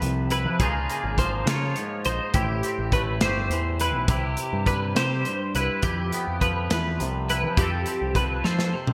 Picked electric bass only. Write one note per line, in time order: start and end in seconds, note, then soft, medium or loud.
0.02 0.47 C2 loud
0.45 0.58 F3 medium
0.60 0.87 C#2 loud
1.04 1.44 G#1 medium
1.46 1.73 C#3 medium
2.06 2.19 A#1 medium
2.34 2.61 A1 loud
2.78 3.18 A1 medium
3.22 3.48 G1 medium
3.50 3.95 E2 medium
3.95 4.08 B1 medium
4.08 4.35 C2 medium
4.53 4.93 G2 medium
4.96 5.23 C3 loud
5.55 5.68 C2 medium
5.84 6.10 F2 loud
6.28 6.67 F2 medium
6.71 6.97 E2 loud
7.01 7.45 C2 loud
7.44 7.57 F3 medium
7.57 7.84 F2 loud
8.02 8.41 C2 medium
8.45 8.71 F3 loud